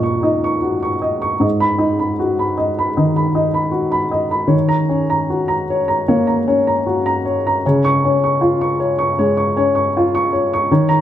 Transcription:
Already playing: D#2 A#2 D#4 F#4 D#5 C#6
0.03 C#6
0.23 D#4 D#5
0.44 C#6
0.62 F#4
0.83 C#6
1.02 D#5
1.22 C#6
1.40 G#2 D#5
1.60 B5
1.78 D#4 D#5
1.99 B5
2.19 F#4
2.39 B5
2.58 D#5
2.79 B5
2.97 D#3 D#5
3.16 B5
3.35 D#4 D#5
3.54 B5
3.71 F#4
3.92 B5
4.11 D#5
4.31 B5
4.47 D#3 C#5
4.69 A#5
4.89 C#4 C#5
5.10 A#5
5.30 F#4
5.48 A#5
5.70 C#5
5.88 A#5
6.08 A#3 C#5
6.27 A#5
6.48 C#4 C#5
6.67 A#5
6.86 F#4
7.06 A#5
7.25 C#5
7.47 A#5
7.66 C#3 C#5
7.85 C#6
8.04 C#4 C#5
8.24 C#6
8.41 F4
8.61 C#6
8.80 C#5
8.99 C#6
9.19 G#3 C#5
9.37 C#6
9.57 C#4 C#5
9.75 C#6
9.97 F4
10.15 C#6
10.33 C#5
10.54 C#6
10.71 D#3 C#5
10.89 A#5

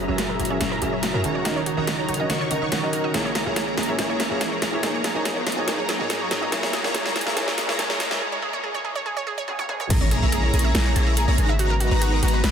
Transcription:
Already playing: A#2 G#3 E4, riser
0.07 F#1 F#3 C#4 G#4 A#4 C#5 E5 A#5
0.18 F#4, snare, closed hi-hat
0.29 A#4
0.39 F#1 F#3 C#4 F#4 G#4 E5 A#5, closed hi-hat
0.45 closed hi-hat
0.49 F#3 C#4 G#4 A#4 C#5 E5
0.60 F#1 F#3 C#4 F#4 G#4 E5 A#5, snare, closed hi-hat
0.72 A#4
0.81 F#1 F#3 C#4 F#4 G#4 A#4 E5 A#5, closed hi-hat
0.93 C#5
1.03 F#4, snare, closed hi-hat
1.13 F#2 F#3 C#4 G#4 A#4 E5 A#5
1.24 D#1 D#3 D#4 F#4 C#5 A#5, closed hi-hat
1.35 C#5
1.44 C#3 D#3 F#3 C#4 D#4 F#4 A#4 D#5, snare, closed hi-hat
1.56 C#5
1.66 F#4, closed hi-hat
1.76 D#1 D#3 C#4 D#4 F#4 A#4 C#5 D#5 A#5
1.87 F#4, snare, closed hi-hat
1.98 C#5
2.08 D#1 D#3 D#4 F#4 C#5 A#5, closed hi-hat
2.14 closed hi-hat
2.18 D#3 C#4 F#4 A#4 D#5
2.30 D#1 D#3 D#4 F#4 C#5 C#6, snare, closed hi-hat
2.41 C#5
2.50 D#1 D#3 C#4 D#4 F#4 A#4 C#5 D#5 A#5, closed hi-hat
2.62 D#1 D#3 D#4 F#4 C#5 D#5 C#6
2.72 D#1 D#3 D#4 F#4 C#5 A#5, snare, closed hi-hat
2.82 D#3 C#4 F#4 A#4 C#5 D#5
2.93 F#4, closed hi-hat
3.04 D#5
3.13 A#1 A#2 G#3 A#3 C#4 E4 G#4 C#5 A#5, snare, closed hi-hat
3.25 C#5
3.35 G#4, snare, closed hi-hat
3.45 A#1 A#2 A#3 E4 G#4 C#5 E5 A#5
3.56 G#4, snare, closed hi-hat
3.67 C#5
3.77 A#1 A#3 E4 G#4 C#5 A#5, snare, closed hi-hat
3.83 closed hi-hat
3.87 A#2 A#3 E4 G#4 C#5 E5
3.98 A#1 A#2 A#3 E4 G#4 C#5 A#5, snare, closed hi-hat
4.10 C#5
4.20 G#4, snare, closed hi-hat
4.30 A#1 A#2 A#3 E4 G#4 C#5 E5 A#5
4.41 G#4, snare, closed hi-hat
4.52 C#5
4.62 A#1 A#3 E4 G#4 C#5 A#5, snare, closed hi-hat
4.72 A#2 A#3 E4 G#4 C#5 E5
4.82 G#1 A#2 F#3 A#3 B3 D#4 G#4 C#5 A#5, snare, closed hi-hat
4.94 C#5
5.04 G#4, snare, closed hi-hat
5.14 G#1 A#2 A#3 D#4 G#4 C#5 D#5 A#5
5.25 G#4, snare, closed hi-hat
5.36 C#5
5.46 G#1 A#3 D#4 G#4 C#5 A#5, snare, closed hi-hat
5.52 closed hi-hat
5.56 A#2 A#3 D#4 G#4 C#5 D#5
5.67 G#1 A#2 A#3 D#4 G#4 C#5 A#5, snare, closed hi-hat
5.79 C#5
5.89 G#4, snare, closed hi-hat
5.99 G#2 A#2 A#3 D#4 G#4 C#5 D#5 A#5
6.10 G#4, snare, closed hi-hat
6.21 C#5
6.31 G#2 A#3 D#4 G#4 C#5 A#5, snare, closed hi-hat
6.41 A#2 A#3 D#4 G#4 C#5 D#5
6.51 F#1 A#2 G#3 A#3 E4 G#4 C#5 A#5, snare, closed hi-hat
6.63 C#5, snare
6.73 G#4, snare, closed hi-hat
6.83 F#1 A#2 A#3 E4 G#4 C#5 E5 A#5, snare
6.94 F#1 A#2 A#3 E4 G#4 C#5 A#5, snare, closed hi-hat
7.06 C#5, snare
7.16 G#4, snare, closed hi-hat
7.21 closed hi-hat
7.26 F#1 A#2 A#3 E4 G#4 C#5 E5 A#5, snare
7.36 F#1 A#2 A#3 E4 G#4 C#5 A#5, snare, closed hi-hat
7.48 C#5, snare
7.58 G#4, snare, closed hi-hat
7.68 F#1 A#2 A#3 E4 G#4 C#5 E5 A#5, snare
7.78 F#2 A#2 A#3 E4 G#4 C#5 A#5, snare, closed hi-hat
7.90 C#5, snare
8.00 G#4, snare, closed hi-hat
8.10 F#2 A#2 A#3 E4 G#4 C#5 E5 A#5, snare
8.21 G#4
8.32 C#5
8.42 G#4
8.53 C#5
8.64 G#4
8.74 C#5
8.85 G#4
8.95 C#5
9.06 G#4
9.17 C#5
9.27 G#4
9.38 C#5
9.48 G#4, high tom
9.59 C#5, high tom
9.69 G#4, mid tom
9.80 C#5, mid tom
9.90 A#1 C#3 G#3 A#3 C#4 E4 G#4 C#5 A#5, kick, closed hi-hat, crash, impact
10.01 C#5
10.11 G#4, closed hi-hat
10.22 A#1 A#3 E4 G#4 C#5 E5 A#5
10.32 G#4, closed hi-hat
10.43 C#5
10.53 A#1 A#3 E4 G#4 C#5 A#5, closed hi-hat
10.59 closed hi-hat
10.64 E5
10.75 A#1 A#3 E4 G#4 C#5 A#5, snare, closed hi-hat
10.86 C#5
10.96 A#1 A#3 E4 G#4 C#5 A#5, closed hi-hat
11.07 E5
11.17 G#4, closed hi-hat
11.28 A#1 A#3 E4 G#4 C#5 A#5
11.38 G#1 G#3 D#4 F#4 G#4 B4 A#5, closed hi-hat
11.49 E5
11.59 F#3 B3 F#4, closed hi-hat
11.70 A#4
11.80 F#4, closed hi-hat
11.91 G#1 G#3 D#4 F#4 B4 A#5
12.01 F#4, closed hi-hat
12.12 A#4
12.23 G#1 G#3 D#4 F#4 B4 A#5, closed hi-hat
12.28 closed hi-hat
12.34 B4
12.44 G#1 G#3 D#4 F#4 B4 B5, snare, closed hi-hat

